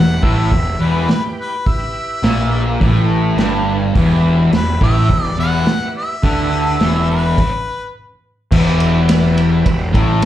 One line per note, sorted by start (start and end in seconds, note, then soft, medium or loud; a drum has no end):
0.00 0.21 E1 medium
0.00 0.17 E2 medium
0.00 0.38 E4 medium
0.00 0.38 G4 medium
0.00 0.38 B4 medium
0.00 0.39 E5 medium
0.00 0.26 F#5 medium
0.22 0.49 A1 medium
0.22 0.50 A2 medium
0.22 0.83 E5 medium
0.22 kick medium
0.51 0.78 E1 medium
0.51 0.74 E2 medium
0.51 0.77 E4 medium
0.51 0.77 G4 medium
0.51 0.77 B4 medium
0.51 0.78 E5 medium
0.51 kick medium
0.51 open hi-hat soft
0.79 1.06 E1 medium
0.79 1.08 E2 medium
0.79 1.57 E4 medium
0.79 1.57 G4 medium
0.79 1.56 B4 medium
0.79 1.10 B4 medium
0.79 1.56 G5 medium
1.09 1.23 B4 medium
1.09 snare loud
1.09 open hi-hat soft
1.40 1.69 B4 medium
1.66 2.69 E4 medium
1.66 2.69 G4 medium
1.66 2.69 B4 medium
1.66 2.81 E5 loud
1.66 2.69 E5 medium
1.66 kick medium
1.66 open hi-hat medium
2.23 2.76 A#1 medium
2.23 2.79 A#2 loud
2.23 snare loud
2.23 open hi-hat soft
2.79 3.34 A1 medium
2.79 3.37 A2 medium
2.79 3.05 E4 medium
2.79 3.05 G4 medium
2.79 3.05 B4 medium
2.79 3.06 E5 medium
2.79 kick medium
2.79 open hi-hat soft
3.09 3.85 E4 medium
3.09 3.86 G4 medium
3.09 3.86 B4 medium
3.09 3.86 E5 medium
3.37 3.91 G1 medium
3.37 3.94 G2 medium
3.37 snare loud
3.37 open hi-hat soft
3.94 4.48 E1 medium
3.94 4.51 E2 loud
3.94 4.97 E4 medium
3.94 4.96 G4 medium
3.94 4.97 B4 medium
3.94 4.97 E5 medium
3.94 kick loud
3.94 open hi-hat soft
4.52 4.79 E1 medium
4.52 4.75 E2 medium
4.52 snare loud
4.52 open hi-hat soft
4.56 4.81 B4 medium
4.81 5.08 A1 medium
4.81 5.09 A2 medium
4.81 5.23 E5 loud
4.81 kick medium
5.09 5.36 E1 medium
5.09 5.32 E2 medium
5.09 5.36 E4 medium
5.09 5.35 G4 medium
5.09 5.36 B4 medium
5.09 5.36 G5 medium
5.09 kick medium
5.09 open hi-hat soft
5.23 5.35 D5 loud
5.37 5.64 E1 medium
5.37 5.66 E2 medium
5.37 6.15 E4 medium
5.37 6.16 G4 medium
5.37 5.92 F#5 medium
5.41 6.16 B4 medium
5.41 6.16 E5 medium
5.66 snare loud
5.66 open hi-hat soft
5.97 7.07 E5 medium
6.23 6.77 D2 medium
6.23 6.80 D3 loud
6.23 7.26 E4 medium
6.23 7.26 G4 medium
6.23 7.26 B4 medium
6.23 7.26 E5 medium
6.23 kick medium
6.23 open hi-hat soft
6.80 7.34 E1 medium
6.80 7.37 E2 medium
6.80 snare loud
6.80 open hi-hat soft
7.10 7.92 B4 medium
7.38 kick medium
7.38 crash medium
8.51 9.62 E1 medium
8.51 9.64 E2 loud
8.51 8.78 E4 medium
8.51 8.77 G4 medium
8.51 8.78 B4 medium
8.51 8.77 E5 medium
8.51 kick loud
8.51 crash loud
8.80 9.83 E4 medium
8.80 9.83 G4 medium
8.80 9.83 B4 medium
8.80 9.83 E5 loud
8.80 ride medium
9.09 snare loud
9.09 ride loud
9.38 ride medium
9.65 9.93 E1 medium
9.65 9.89 E2 medium
9.65 kick medium
9.65 ride medium
9.93 10.21 A1 loud
9.93 10.22 A2 loud
9.93 kick loud
9.93 ride medium